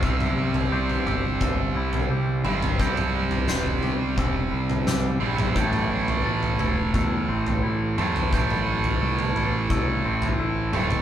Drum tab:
SD |----------------|----o-------o---|----------------|----------------|
T2 |-o------------o-|-o----------o--o|-o------------o-|-o------------o-|
FT |o--o-oo-o--o---o|o--o-oo-o--oo--o|o--o-oo-o--o---o|o--o-oo-o--o---o|
BD |o-------o-------|o-------o-------|o-------o-------|o-------o-------|